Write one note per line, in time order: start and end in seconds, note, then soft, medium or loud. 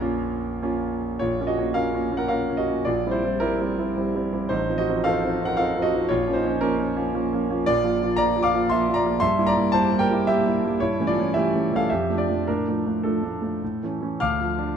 0.00 1.21 A#1 medium
0.00 0.58 A#3 soft
0.00 0.58 C#4 soft
0.00 0.58 F4 soft
0.00 0.58 A#4 medium
0.00 0.58 F5 medium
0.00 0.61 A#5 medium
0.62 1.16 A#3 soft
0.62 1.17 C#4 soft
0.62 1.17 F4 soft
1.19 1.39 A#1 soft
1.19 1.40 F4 soft
1.19 1.47 C#5 medium
1.40 1.56 A#3 soft
1.40 1.57 C#4 soft
1.40 1.57 F4 soft
1.47 1.74 F#4 soft
1.47 1.75 D#5 medium
1.58 1.74 A#3 soft
1.58 1.75 C#4 soft
1.58 1.75 F4 soft
1.74 1.92 A#3 soft
1.74 1.93 C#4 soft
1.74 1.93 F4 soft
1.74 2.14 A#4 medium
1.74 2.16 F5 medium
1.93 2.10 A#3 soft
1.93 2.10 C#4 soft
1.93 2.11 F4 soft
2.12 2.28 A#3 soft
2.12 2.29 C#4 soft
2.12 2.29 F4 soft
2.17 2.28 A#4 medium
2.17 2.31 F#5 medium
2.28 2.47 A#3 soft
2.28 2.47 C#4 soft
2.28 2.47 F4 soft
2.28 2.56 A#4 soft
2.28 2.57 F5 medium
2.50 2.66 A#3 soft
2.50 2.66 C#4 soft
2.50 2.66 F4 soft
2.57 2.84 F#4 medium
2.57 2.85 D#5 medium
2.68 2.84 A#3 soft
2.68 2.84 C#4 soft
2.68 2.84 F4 soft
2.85 3.04 A#1 soft
2.85 3.11 F4 soft
2.85 3.12 D5 medium
3.06 3.21 G3 soft
3.06 3.22 C4 soft
3.06 3.11 E4 soft
3.11 3.23 E4 soft
3.11 3.40 C5 medium
3.23 3.39 G3 soft
3.23 3.40 C4 soft
3.23 3.40 E4 soft
3.40 3.58 G3 soft
3.40 3.58 C4 soft
3.40 3.60 E4 medium
3.40 4.50 A#4 medium
3.61 3.76 G3 soft
3.61 3.76 C4 soft
3.61 3.77 E4 soft
3.78 3.94 G3 soft
3.78 3.94 C4 soft
3.78 3.95 E4 soft
3.97 4.12 G3 soft
3.97 4.13 C4 soft
3.97 4.13 E4 soft
4.15 4.31 G3 soft
4.15 4.31 C4 soft
4.15 4.31 E4 soft
4.33 4.49 G3 soft
4.33 4.49 C4 soft
4.33 4.49 E4 soft
4.49 4.68 A1 soft
4.49 4.69 D#4 medium
4.49 4.77 C5 medium
4.69 4.85 F3 soft
4.69 4.85 C4 soft
4.69 4.86 D#4 soft
4.78 5.03 F#4 medium
4.78 5.05 D#5 medium
4.89 5.04 F3 soft
4.89 5.04 C4 soft
4.89 5.05 D#4 soft
5.04 5.21 F3 soft
5.04 5.21 C4 soft
5.04 5.22 D#4 soft
5.04 5.42 A4 medium
5.04 5.44 F5 medium
5.24 5.39 F3 soft
5.24 5.39 C4 soft
5.24 5.40 D#4 soft
5.41 5.56 F3 soft
5.41 5.57 C4 soft
5.41 5.57 D#4 soft
5.45 5.58 A#4 medium
5.45 5.58 F#5 medium
5.57 5.74 F3 soft
5.57 5.74 C4 soft
5.57 5.75 D#4 soft
5.57 5.83 A4 medium
5.57 5.84 F5 medium
5.76 5.92 F3 soft
5.76 5.92 C4 soft
5.76 5.92 D#4 soft
5.82 6.08 F#4 medium
5.82 6.10 D#5 medium
5.93 6.09 F3 soft
5.93 6.09 C4 soft
5.93 6.10 D#4 soft
6.09 6.28 A#1 soft
6.09 6.35 F4 medium
6.09 6.36 C#5 medium
6.27 6.43 F3 soft
6.27 6.43 A#3 soft
6.27 6.44 C#4 soft
6.33 6.60 D#4 medium
6.33 6.61 C5 medium
6.45 6.60 F3 soft
6.45 6.61 A#3 soft
6.45 6.60 C#4 soft
6.61 6.76 F3 soft
6.61 6.77 A#3 soft
6.61 6.78 C#4 medium
6.61 7.66 A#4 medium
6.78 6.94 F3 soft
6.78 6.95 A#3 soft
6.78 6.95 C#4 soft
6.96 7.12 F3 soft
6.96 7.13 A#3 soft
6.96 7.13 C#4 soft
7.13 7.30 F3 soft
7.13 7.30 A#3 soft
7.13 7.30 C#4 soft
7.32 7.48 F3 soft
7.32 7.48 A#3 soft
7.32 7.49 C#4 soft
7.50 7.65 F3 soft
7.50 7.66 A#3 soft
7.50 7.66 C#4 soft
7.66 7.84 A#1 medium
7.66 7.83 F4 medium
7.66 8.16 D5 medium
7.84 8.00 F3 soft
7.84 8.00 A#3 soft
7.84 8.00 F4 soft
8.02 8.16 F3 soft
8.02 8.17 A#3 soft
8.02 8.18 F4 soft
8.16 8.34 F3 soft
8.16 8.34 A#3 soft
8.16 8.35 F4 medium
8.16 8.42 D5 medium
8.16 8.44 A#5 loud
8.36 8.52 F3 soft
8.36 8.52 A#3 soft
8.36 8.52 F4 soft
8.43 8.68 F5 medium
8.43 8.70 D6 medium
8.54 8.69 F3 soft
8.54 8.70 A#3 soft
8.54 8.70 F4 soft
8.70 8.87 F3 soft
8.70 8.87 A#3 soft
8.70 8.87 F4 soft
8.70 8.95 E5 medium
8.70 8.96 C6 medium
8.89 9.03 F3 soft
8.89 9.04 A#3 soft
8.89 9.04 F4 soft
8.94 9.20 D5 medium
8.94 9.21 A#5 medium
9.05 9.20 F3 soft
9.05 9.21 A#3 soft
9.05 9.21 F4 soft
9.20 9.39 G2 medium
9.20 9.46 E5 medium
9.20 9.47 C6 loud
9.38 9.54 G3 soft
9.38 9.55 A#3 soft
9.38 9.55 E4 soft
9.47 9.72 D5 medium
9.47 9.74 A#5 medium
9.56 9.72 G3 soft
9.56 9.73 A#3 soft
9.56 9.73 E4 soft
9.72 9.89 G3 soft
9.72 9.90 A#3 soft
9.72 9.90 E4 soft
9.72 9.98 C5 medium
9.72 9.99 A5 medium
9.92 10.07 G3 soft
9.92 10.08 A#3 soft
9.92 10.08 E4 soft
9.99 10.25 A#4 medium
9.99 10.26 G5 medium
10.11 10.26 G3 soft
10.11 10.26 A#3 soft
10.11 10.27 E4 soft
10.27 10.44 G3 soft
10.27 10.44 A#3 soft
10.27 10.44 E4 soft
10.27 10.77 G4 medium
10.27 10.80 E5 medium
10.46 10.62 G3 soft
10.46 10.62 A#3 soft
10.46 10.62 E4 soft
10.64 10.79 G3 soft
10.64 10.80 A#3 soft
10.64 10.80 E4 soft
10.80 10.98 G2 soft
10.80 11.06 E4 medium
10.80 11.07 C#5 medium
11.00 11.15 E3 soft
11.00 11.15 A3 soft
11.00 11.15 C#4 soft
11.07 11.32 F4 medium
11.07 11.34 D5 medium
11.18 11.33 E3 soft
11.18 11.33 A3 soft
11.18 11.34 C#4 soft
11.34 11.51 E3 soft
11.34 11.51 A3 soft
11.34 11.52 C#4 soft
11.34 11.72 G4 medium
11.34 11.75 E5 medium
11.54 11.69 E3 soft
11.54 11.69 A3 soft
11.54 11.70 C#4 soft
11.73 11.88 E3 soft
11.73 11.89 A3 soft
11.73 11.89 C#4 soft
11.73 11.89 A4 medium
11.73 11.89 F5 medium
11.90 12.09 F2 soft
11.90 12.16 G4 medium
11.90 12.18 E5 medium
12.09 12.26 F3 soft
12.09 12.26 A3 soft
12.09 12.26 D4 soft
12.18 12.45 F4 soft
12.18 12.47 D5 medium
12.28 12.45 F3 soft
12.28 12.45 A3 soft
12.28 12.46 D4 soft
12.47 12.66 A2 soft
12.47 12.67 D4 medium
12.47 13.05 A#4 medium
12.68 12.84 F3 soft
12.68 12.84 A3 soft
12.68 12.85 D4 soft
12.86 13.02 F3 soft
12.86 13.03 A3 soft
12.86 13.03 D4 soft
13.03 13.21 F3 soft
13.03 13.22 A3 soft
13.03 13.22 D4 soft
13.03 13.90 A4 soft
13.23 13.40 F3 soft
13.23 13.40 A3 soft
13.23 13.40 D4 soft
13.42 13.59 F3 soft
13.42 13.59 A3 soft
13.42 13.60 D4 soft
13.63 13.81 A2 soft
13.83 13.99 E3 soft
13.83 13.99 A3 soft
13.83 14.00 C#4 soft
14.01 14.18 E3 soft
14.01 14.18 A3 soft
14.01 14.19 C#4 soft
14.20 14.77 D2 soft
14.20 14.73 F5 medium
14.20 14.73 D6 medium
14.20 14.77 F6 medium
14.41 14.70 F3 soft
14.59 14.77 D4 soft